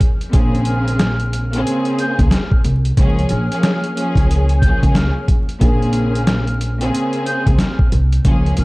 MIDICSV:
0, 0, Header, 1, 5, 480
1, 0, Start_track
1, 0, Key_signature, -5, "minor"
1, 0, Tempo, 659341
1, 244, Time_signature, 4, 2, 24, 8
1, 6293, End_track
2, 0, Start_track
2, 0, Title_t, "Flute"
2, 0, Program_c, 0, 73
2, 487, Note_on_c, 0, 89, 85
2, 1176, Note_off_c, 0, 89, 0
2, 1458, Note_on_c, 0, 91, 80
2, 1582, Note_off_c, 0, 91, 0
2, 1692, Note_on_c, 0, 89, 79
2, 1904, Note_off_c, 0, 89, 0
2, 2412, Note_on_c, 0, 89, 92
2, 3099, Note_off_c, 0, 89, 0
2, 3347, Note_on_c, 0, 91, 79
2, 3485, Note_off_c, 0, 91, 0
2, 3603, Note_on_c, 0, 89, 90
2, 3819, Note_off_c, 0, 89, 0
2, 4320, Note_on_c, 0, 89, 85
2, 5013, Note_off_c, 0, 89, 0
2, 5290, Note_on_c, 0, 91, 85
2, 5418, Note_off_c, 0, 91, 0
2, 5528, Note_on_c, 0, 89, 86
2, 5742, Note_off_c, 0, 89, 0
2, 6258, Note_on_c, 0, 89, 90
2, 6293, Note_off_c, 0, 89, 0
2, 6293, End_track
3, 0, Start_track
3, 0, Title_t, "String section"
3, 0, Program_c, 1, 48
3, 232, Note_on_c, 1, 49, 100
3, 236, Note_on_c, 1, 58, 82
3, 240, Note_on_c, 1, 60, 89
3, 245, Note_on_c, 1, 68, 110
3, 1022, Note_off_c, 1, 49, 0
3, 1024, Note_off_c, 1, 58, 0
3, 1026, Note_off_c, 1, 60, 0
3, 1028, Note_off_c, 1, 68, 0
3, 1113, Note_on_c, 1, 49, 107
3, 1117, Note_on_c, 1, 58, 100
3, 1122, Note_on_c, 1, 60, 106
3, 1127, Note_on_c, 1, 68, 123
3, 1873, Note_off_c, 1, 49, 0
3, 1875, Note_off_c, 1, 58, 0
3, 1877, Note_off_c, 1, 60, 0
3, 1879, Note_off_c, 1, 68, 0
3, 2168, Note_on_c, 1, 53, 93
3, 2173, Note_on_c, 1, 58, 84
3, 2178, Note_on_c, 1, 61, 93
3, 2183, Note_on_c, 1, 68, 113
3, 2516, Note_off_c, 1, 53, 0
3, 2519, Note_off_c, 1, 58, 0
3, 2521, Note_off_c, 1, 61, 0
3, 2523, Note_off_c, 1, 68, 0
3, 2553, Note_on_c, 1, 53, 94
3, 2557, Note_on_c, 1, 58, 88
3, 2562, Note_on_c, 1, 61, 92
3, 2566, Note_on_c, 1, 68, 107
3, 2858, Note_off_c, 1, 53, 0
3, 2862, Note_off_c, 1, 58, 0
3, 2867, Note_on_c, 1, 53, 108
3, 2868, Note_off_c, 1, 61, 0
3, 2870, Note_off_c, 1, 68, 0
3, 2871, Note_on_c, 1, 58, 88
3, 2876, Note_on_c, 1, 61, 94
3, 2881, Note_on_c, 1, 68, 123
3, 3325, Note_off_c, 1, 53, 0
3, 3327, Note_off_c, 1, 58, 0
3, 3330, Note_off_c, 1, 61, 0
3, 3332, Note_off_c, 1, 68, 0
3, 3375, Note_on_c, 1, 53, 97
3, 3381, Note_on_c, 1, 58, 91
3, 3385, Note_on_c, 1, 61, 89
3, 3389, Note_on_c, 1, 68, 115
3, 3819, Note_off_c, 1, 53, 0
3, 3822, Note_off_c, 1, 58, 0
3, 3824, Note_off_c, 1, 61, 0
3, 3826, Note_off_c, 1, 68, 0
3, 4074, Note_on_c, 1, 49, 101
3, 4077, Note_on_c, 1, 58, 90
3, 4082, Note_on_c, 1, 60, 89
3, 4086, Note_on_c, 1, 68, 111
3, 4862, Note_off_c, 1, 49, 0
3, 4864, Note_off_c, 1, 58, 0
3, 4867, Note_off_c, 1, 60, 0
3, 4869, Note_off_c, 1, 68, 0
3, 4952, Note_on_c, 1, 49, 105
3, 4957, Note_on_c, 1, 58, 99
3, 4961, Note_on_c, 1, 60, 110
3, 4966, Note_on_c, 1, 68, 124
3, 5712, Note_off_c, 1, 49, 0
3, 5715, Note_off_c, 1, 58, 0
3, 5717, Note_off_c, 1, 60, 0
3, 5719, Note_off_c, 1, 68, 0
3, 6012, Note_on_c, 1, 53, 96
3, 6016, Note_on_c, 1, 58, 87
3, 6021, Note_on_c, 1, 61, 86
3, 6026, Note_on_c, 1, 68, 113
3, 6293, Note_off_c, 1, 53, 0
3, 6293, Note_off_c, 1, 58, 0
3, 6293, Note_off_c, 1, 61, 0
3, 6293, Note_off_c, 1, 68, 0
3, 6293, End_track
4, 0, Start_track
4, 0, Title_t, "Upright bass"
4, 0, Program_c, 2, 32
4, 245, Note_on_c, 2, 34, 102
4, 1175, Note_off_c, 2, 34, 0
4, 1595, Note_on_c, 2, 37, 94
4, 1669, Note_off_c, 2, 37, 0
4, 1926, Note_on_c, 2, 36, 90
4, 2117, Note_off_c, 2, 36, 0
4, 2166, Note_on_c, 2, 37, 102
4, 2357, Note_off_c, 2, 37, 0
4, 2406, Note_on_c, 2, 34, 92
4, 2521, Note_off_c, 2, 34, 0
4, 3026, Note_on_c, 2, 37, 93
4, 3411, Note_off_c, 2, 37, 0
4, 3516, Note_on_c, 2, 37, 96
4, 3705, Note_off_c, 2, 37, 0
4, 4086, Note_on_c, 2, 34, 107
4, 5016, Note_off_c, 2, 34, 0
4, 5436, Note_on_c, 2, 37, 99
4, 5509, Note_off_c, 2, 37, 0
4, 5768, Note_on_c, 2, 36, 93
4, 5958, Note_off_c, 2, 36, 0
4, 6006, Note_on_c, 2, 37, 103
4, 6197, Note_off_c, 2, 37, 0
4, 6248, Note_on_c, 2, 34, 94
4, 6293, Note_off_c, 2, 34, 0
4, 6293, End_track
5, 0, Start_track
5, 0, Title_t, "Drums"
5, 3, Note_on_c, 9, 36, 92
5, 5, Note_on_c, 9, 42, 79
5, 76, Note_off_c, 9, 36, 0
5, 77, Note_off_c, 9, 42, 0
5, 154, Note_on_c, 9, 42, 47
5, 226, Note_off_c, 9, 42, 0
5, 242, Note_on_c, 9, 42, 107
5, 243, Note_on_c, 9, 36, 122
5, 315, Note_off_c, 9, 42, 0
5, 316, Note_off_c, 9, 36, 0
5, 398, Note_on_c, 9, 42, 36
5, 471, Note_off_c, 9, 42, 0
5, 474, Note_on_c, 9, 42, 73
5, 547, Note_off_c, 9, 42, 0
5, 638, Note_on_c, 9, 42, 59
5, 711, Note_off_c, 9, 42, 0
5, 723, Note_on_c, 9, 42, 92
5, 724, Note_on_c, 9, 40, 93
5, 725, Note_on_c, 9, 38, 120
5, 796, Note_off_c, 9, 42, 0
5, 797, Note_off_c, 9, 40, 0
5, 798, Note_off_c, 9, 38, 0
5, 871, Note_on_c, 9, 42, 35
5, 944, Note_off_c, 9, 42, 0
5, 969, Note_on_c, 9, 42, 82
5, 1042, Note_off_c, 9, 42, 0
5, 1115, Note_on_c, 9, 42, 65
5, 1188, Note_off_c, 9, 42, 0
5, 1214, Note_on_c, 9, 42, 98
5, 1287, Note_off_c, 9, 42, 0
5, 1348, Note_on_c, 9, 42, 36
5, 1421, Note_off_c, 9, 42, 0
5, 1446, Note_on_c, 9, 42, 73
5, 1519, Note_off_c, 9, 42, 0
5, 1594, Note_on_c, 9, 36, 94
5, 1595, Note_on_c, 9, 42, 63
5, 1666, Note_off_c, 9, 36, 0
5, 1668, Note_off_c, 9, 42, 0
5, 1682, Note_on_c, 9, 40, 91
5, 1683, Note_on_c, 9, 38, 113
5, 1690, Note_on_c, 9, 42, 96
5, 1755, Note_off_c, 9, 38, 0
5, 1755, Note_off_c, 9, 40, 0
5, 1763, Note_off_c, 9, 42, 0
5, 1831, Note_on_c, 9, 36, 96
5, 1904, Note_off_c, 9, 36, 0
5, 1925, Note_on_c, 9, 42, 78
5, 1998, Note_off_c, 9, 42, 0
5, 2075, Note_on_c, 9, 42, 49
5, 2148, Note_off_c, 9, 42, 0
5, 2164, Note_on_c, 9, 36, 121
5, 2164, Note_on_c, 9, 42, 104
5, 2237, Note_off_c, 9, 36, 0
5, 2237, Note_off_c, 9, 42, 0
5, 2320, Note_on_c, 9, 42, 37
5, 2392, Note_off_c, 9, 42, 0
5, 2395, Note_on_c, 9, 42, 75
5, 2468, Note_off_c, 9, 42, 0
5, 2560, Note_on_c, 9, 42, 59
5, 2633, Note_off_c, 9, 42, 0
5, 2644, Note_on_c, 9, 42, 93
5, 2645, Note_on_c, 9, 40, 94
5, 2646, Note_on_c, 9, 38, 119
5, 2717, Note_off_c, 9, 42, 0
5, 2718, Note_off_c, 9, 40, 0
5, 2719, Note_off_c, 9, 38, 0
5, 2793, Note_on_c, 9, 42, 38
5, 2866, Note_off_c, 9, 42, 0
5, 2892, Note_on_c, 9, 42, 83
5, 2964, Note_off_c, 9, 42, 0
5, 3025, Note_on_c, 9, 36, 108
5, 3037, Note_on_c, 9, 42, 68
5, 3097, Note_off_c, 9, 36, 0
5, 3110, Note_off_c, 9, 42, 0
5, 3136, Note_on_c, 9, 42, 98
5, 3209, Note_off_c, 9, 42, 0
5, 3270, Note_on_c, 9, 42, 37
5, 3343, Note_off_c, 9, 42, 0
5, 3363, Note_on_c, 9, 36, 91
5, 3368, Note_on_c, 9, 42, 74
5, 3436, Note_off_c, 9, 36, 0
5, 3441, Note_off_c, 9, 42, 0
5, 3515, Note_on_c, 9, 36, 95
5, 3517, Note_on_c, 9, 42, 66
5, 3588, Note_off_c, 9, 36, 0
5, 3590, Note_off_c, 9, 42, 0
5, 3603, Note_on_c, 9, 38, 112
5, 3603, Note_on_c, 9, 40, 92
5, 3611, Note_on_c, 9, 42, 93
5, 3675, Note_off_c, 9, 40, 0
5, 3676, Note_off_c, 9, 38, 0
5, 3684, Note_off_c, 9, 42, 0
5, 3845, Note_on_c, 9, 36, 94
5, 3846, Note_on_c, 9, 42, 77
5, 3917, Note_off_c, 9, 36, 0
5, 3919, Note_off_c, 9, 42, 0
5, 3996, Note_on_c, 9, 42, 46
5, 4068, Note_off_c, 9, 42, 0
5, 4085, Note_on_c, 9, 36, 119
5, 4085, Note_on_c, 9, 42, 102
5, 4158, Note_off_c, 9, 36, 0
5, 4158, Note_off_c, 9, 42, 0
5, 4240, Note_on_c, 9, 42, 37
5, 4313, Note_off_c, 9, 42, 0
5, 4316, Note_on_c, 9, 42, 74
5, 4389, Note_off_c, 9, 42, 0
5, 4480, Note_on_c, 9, 42, 57
5, 4553, Note_off_c, 9, 42, 0
5, 4565, Note_on_c, 9, 42, 91
5, 4566, Note_on_c, 9, 40, 93
5, 4567, Note_on_c, 9, 38, 117
5, 4638, Note_off_c, 9, 42, 0
5, 4639, Note_off_c, 9, 40, 0
5, 4640, Note_off_c, 9, 38, 0
5, 4713, Note_on_c, 9, 42, 37
5, 4786, Note_off_c, 9, 42, 0
5, 4811, Note_on_c, 9, 42, 84
5, 4884, Note_off_c, 9, 42, 0
5, 4957, Note_on_c, 9, 42, 67
5, 5029, Note_off_c, 9, 42, 0
5, 5056, Note_on_c, 9, 42, 98
5, 5129, Note_off_c, 9, 42, 0
5, 5189, Note_on_c, 9, 42, 36
5, 5262, Note_off_c, 9, 42, 0
5, 5288, Note_on_c, 9, 42, 77
5, 5361, Note_off_c, 9, 42, 0
5, 5435, Note_on_c, 9, 36, 98
5, 5436, Note_on_c, 9, 42, 66
5, 5507, Note_off_c, 9, 36, 0
5, 5509, Note_off_c, 9, 42, 0
5, 5522, Note_on_c, 9, 40, 89
5, 5523, Note_on_c, 9, 38, 110
5, 5531, Note_on_c, 9, 42, 99
5, 5595, Note_off_c, 9, 40, 0
5, 5596, Note_off_c, 9, 38, 0
5, 5603, Note_off_c, 9, 42, 0
5, 5672, Note_on_c, 9, 36, 98
5, 5744, Note_off_c, 9, 36, 0
5, 5766, Note_on_c, 9, 42, 80
5, 5839, Note_off_c, 9, 42, 0
5, 5915, Note_on_c, 9, 42, 48
5, 5988, Note_off_c, 9, 42, 0
5, 6004, Note_on_c, 9, 42, 100
5, 6005, Note_on_c, 9, 36, 119
5, 6077, Note_off_c, 9, 36, 0
5, 6077, Note_off_c, 9, 42, 0
5, 6161, Note_on_c, 9, 42, 36
5, 6234, Note_off_c, 9, 42, 0
5, 6237, Note_on_c, 9, 42, 74
5, 6293, Note_off_c, 9, 42, 0
5, 6293, End_track
0, 0, End_of_file